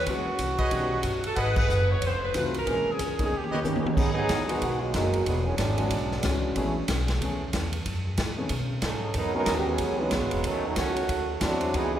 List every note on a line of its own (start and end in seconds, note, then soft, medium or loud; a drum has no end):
0.06 0.25 C#2 medium
0.06 0.25 E3 medium
0.06 0.25 G#3 medium
0.06 0.25 A#3 medium
0.06 0.25 C#4 medium
0.06 1.25 F#4 medium
0.06 0.25 G#4 medium
0.06 kick soft
0.06 ride medium
0.26 muted upright bass stroke soft
0.39 0.71 C2 medium
0.39 kick soft
0.39 hi-hat pedal medium
0.39 ride medium
0.58 1.01 G#4 medium
0.58 1.01 B4 medium
0.58 1.02 C#5 medium
0.58 1.02 D#5 medium
0.58 kick medium
0.58 ride soft
0.71 1.03 B1 medium
0.71 0.90 D#3 medium
0.71 0.89 G3 soft
0.71 0.90 B3 soft
0.71 0.90 C#4 soft
0.71 0.90 G4 medium
0.71 kick soft
0.71 ride medium
1.03 1.36 G1 medium
1.03 kick soft
1.03 hi-hat pedal medium
1.03 ride medium
1.24 1.37 A4 medium
1.24 ride soft
1.36 1.68 G#1 medium
1.36 1.85 G#4 medium
1.36 1.85 B4 medium
1.36 1.58 B4 loud
1.36 1.85 D#5 medium
1.36 1.85 F#5 medium
1.36 kick soft
1.36 ride medium
1.56 1.89 B4 medium
1.56 kick medium
1.56 crash medium
1.69 2.00 F#1 medium
1.69 hi-hat pedal medium
1.91 2.03 C#5 medium
2.02 2.33 F1 medium
2.02 kick soft
2.02 ride medium
2.07 2.23 C5 medium
2.25 2.35 B4 medium
2.34 2.66 C2 medium
2.34 2.52 D#3 medium
2.34 2.52 F#3 medium
2.34 2.52 A3 medium
2.34 2.53 C4 medium
2.34 2.53 F4 medium
2.34 2.55 B4 medium
2.34 kick soft
2.34 hi-hat pedal medium
2.34 ride medium
2.54 ride soft
2.59 2.89 A#4 medium
2.67 2.85 A#1 medium
2.67 2.85 E3 medium
2.67 2.85 G#3 medium
2.67 2.85 A#3 medium
2.67 2.85 C#4 medium
2.67 2.85 G#4 medium
2.67 kick soft
2.67 ride medium
2.85 muted upright bass stroke soft
2.91 3.21 G#4 medium
2.99 3.31 C#2 medium
2.99 kick soft
2.99 hi-hat pedal medium
2.99 ride medium
3.19 3.31 D#3 medium
3.19 3.31 A#3 soft
3.19 3.31 B3 medium
3.19 3.31 C#4 medium
3.19 3.31 D#4 medium
3.19 kick soft
3.19 ride medium
3.24 3.33 G#4 medium
3.32 3.63 D#2 medium
3.36 3.86 G4 medium
3.44 high tom medium
3.51 3.60 G4 medium
3.51 3.60 B4 medium
3.51 3.60 C#5 medium
3.51 3.60 D#5 medium
3.51 high tom medium
3.62 3.82 G2 medium
3.62 3.93 D#3 medium
3.62 3.82 D#3 medium
3.62 3.94 G3 medium
3.62 3.94 A#3 medium
3.62 3.82 A#3 medium
3.62 3.82 B3 medium
3.62 3.94 C#4 medium
3.62 3.82 C#4 medium
3.62 3.83 A#4 medium
3.62 hi-hat pedal medium
3.62 high tom medium
3.76 high tom medium
3.84 muted upright bass stroke soft
3.84 high tom medium
3.95 4.28 G#2 medium
3.95 4.12 F#3 medium
3.95 4.13 B3 medium
3.95 4.13 D#4 medium
3.95 4.12 G#4 loud
3.95 kick medium
3.95 crash medium
4.14 4.45 F#3 medium
4.14 4.45 B3 medium
4.14 4.45 D#4 loud
4.14 4.45 G#4 loud
4.29 4.60 D#2 medium
4.29 kick soft
4.29 snare medium
4.29 hi-hat pedal medium
4.29 ride medium
4.46 4.79 D#3 medium
4.46 4.60 F#3 medium
4.46 4.80 G#3 medium
4.46 4.60 G#3 medium
4.46 4.80 B3 medium
4.46 4.60 B3 medium
4.46 4.61 D#4 medium
4.46 4.80 F#4 medium
4.46 4.61 G#4 medium
4.46 ride medium
4.62 4.93 B1 medium
4.62 kick soft
4.62 ride medium
4.80 5.26 D#3 medium
4.80 5.25 F#3 medium
4.80 5.24 G#3 medium
4.80 5.27 A#3 medium
4.94 5.26 F#1 medium
4.94 5.27 B2 medium
4.94 5.26 F#3 medium
4.94 5.27 G#3 medium
4.94 5.27 D#4 medium
4.94 5.27 G#4 medium
4.94 kick soft
4.94 snare medium
4.94 hi-hat pedal medium
4.94 ride medium
5.13 ride soft
5.25 5.58 E1 medium
5.25 5.44 D3 medium
5.25 5.44 F#3 medium
5.25 5.44 G#3 medium
5.25 5.44 B3 medium
5.25 kick soft
5.25 ride medium
5.45 5.55 F#3 medium
5.45 5.56 G#3 medium
5.45 5.55 B3 medium
5.45 5.58 C#4 medium
5.56 5.90 G#1 medium
5.56 6.42 F#3 medium
5.56 6.42 G#3 medium
5.56 6.42 B3 medium
5.56 6.42 D4 medium
5.56 kick soft
5.56 snare medium
5.56 hi-hat pedal medium
5.56 ride medium
5.78 5.90 E3 medium
5.78 5.90 G#3 medium
5.78 5.90 C#4 medium
5.78 5.90 D4 medium
5.78 5.90 F#4 medium
5.78 ride medium
5.91 6.23 B1 medium
5.91 kick soft
5.91 ride medium
6.11 snare soft
6.23 6.55 C#2 medium
6.23 6.54 E3 medium
6.23 6.56 G#3 medium
6.23 6.55 C#4 medium
6.23 6.56 D4 medium
6.23 6.56 F#4 medium
6.23 kick soft
6.23 snare medium
6.23 hi-hat pedal medium
6.23 ride medium
6.56 6.87 A1 medium
6.56 6.74 E3 medium
6.56 6.74 A3 medium
6.56 6.74 B3 medium
6.56 6.74 C#4 medium
6.56 6.74 G#4 medium
6.56 kick soft
6.56 ride medium
6.88 7.20 B1 loud
6.88 kick soft
6.88 snare medium
6.88 hi-hat pedal medium
6.88 ride medium
7.08 snare medium
7.08 ride soft
7.21 7.52 D#2 medium
7.21 7.39 E3 medium
7.21 7.39 A3 medium
7.21 7.39 B3 medium
7.21 7.39 C#4 medium
7.21 7.39 G#4 medium
7.21 kick soft
7.21 ride medium
7.53 7.85 E2 loud
7.53 kick soft
7.53 snare medium
7.53 hi-hat pedal medium
7.53 ride medium
7.73 ride medium
7.86 8.17 F#2 medium
7.86 kick soft
7.86 ride medium
8.18 8.49 A2 medium
8.18 kick soft
8.18 snare medium
8.18 hi-hat pedal medium
8.18 ride medium
8.38 8.49 D#3 medium
8.38 8.49 A3 medium
8.38 8.49 B3 medium
8.38 8.49 C#4 medium
8.38 8.50 G#4 medium
8.49 8.81 B2 medium
8.49 kick soft
8.49 ride medium
8.82 9.14 G#2 medium
8.82 9.13 F#3 medium
8.82 9.13 C#4 medium
8.82 9.13 D#4 medium
8.82 9.13 A4 medium
8.82 kick soft
8.82 snare medium
8.82 hi-hat pedal soft
8.82 ride medium
9.14 9.46 E2 medium
9.14 9.34 F#3 loud
9.14 9.34 B3 medium
9.14 9.34 D#4 medium
9.14 9.34 A#4 loud
9.14 kick soft
9.14 ride medium
9.34 9.77 E3 medium
9.34 9.57 F#3 loud
9.34 9.77 G#3 medium
9.34 9.77 B3 medium
9.34 9.57 B3 loud
9.34 9.77 C#4 medium
9.34 9.57 D#4 medium
9.34 9.77 F#4 medium
9.34 9.57 A#4 loud
9.46 9.78 D#2 loud
9.46 kick soft
9.46 snare medium
9.46 hi-hat pedal medium
9.46 ride medium
9.58 9.67 G4 medium
9.68 9.99 F#3 medium
9.68 9.99 B3 medium
9.68 10.00 C#4 medium
9.68 10.00 G#4 medium
9.78 10.11 C#2 medium
9.78 kick soft
9.78 ride medium
9.99 10.45 C#3 medium
9.99 10.10 E3 medium
9.99 10.44 F#3 medium
9.99 10.11 G#3 soft
9.99 10.45 G#3 medium
9.99 10.11 B3 medium
9.99 10.45 B3 medium
9.99 10.11 C#4 medium
9.99 10.11 D#4 medium
10.11 10.21 B1 medium
10.11 kick soft
10.11 snare medium
10.11 hi-hat pedal medium
10.11 ride medium
10.21 10.32 G#1 medium
10.31 10.43 E1 medium
10.31 ride medium
10.44 10.76 D#2 medium
10.44 10.65 D#3 medium
10.44 10.64 F#3 medium
10.44 10.65 A3 medium
10.44 10.64 C#4 medium
10.44 kick soft
10.44 ride medium
10.66 10.78 F#3 medium
10.66 10.76 A3 medium
10.66 10.76 C#4 medium
10.66 10.77 D#4 loud
10.76 11.08 C#2 loud
10.76 11.07 D#3 medium
10.76 11.37 A3 medium
10.76 11.07 C#4 medium
10.76 11.37 F#4 loud
10.76 kick soft
10.76 snare medium
10.76 hi-hat pedal medium
10.76 ride medium
10.96 ride medium
11.09 11.40 D2 medium
11.09 kick soft
11.09 ride medium
11.40 11.73 E2 loud
11.40 11.73 E3 medium
11.40 11.75 F#3 medium
11.40 11.75 A3 medium
11.40 11.74 B3 medium
11.40 11.74 C4 medium
11.40 11.74 D4 medium
11.40 11.74 F#4 medium
11.40 kick soft
11.40 snare medium
11.40 hi-hat pedal medium
11.40 ride medium
11.61 ride soft
11.74 11.99 C#2 medium
11.74 11.93 E3 medium
11.74 11.93 B3 medium
11.74 11.94 D#4 medium
11.74 11.93 G#4 loud
11.74 kick soft
11.74 ride medium
11.94 11.99 E3 loud
11.94 11.99 B3 medium
11.94 11.99 D#4 medium
11.94 11.99 G#4 loud